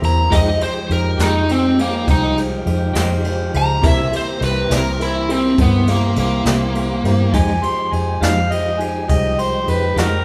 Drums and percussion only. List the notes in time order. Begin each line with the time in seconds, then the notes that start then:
0.03 ride
0.32 kick, ride
0.61 ride
0.90 ride
1.19 snare, ride
1.49 ride
1.79 ride
2.08 kick, ride
2.37 ride
2.67 ride
2.95 snare, ride
3.24 ride
3.54 ride
3.84 kick, ride
4.13 ride
4.42 ride
4.71 snare, ride
5.01 ride
5.30 ride
5.58 kick, ride
5.87 ride
6.16 ride
6.45 snare, ride
6.75 ride
7.05 ride
7.34 kick, ride
7.63 ride
7.93 ride
8.22 snare, ride
8.52 ride
8.80 ride
9.09 kick, ride
9.39 ride
9.68 ride
9.97 snare, ride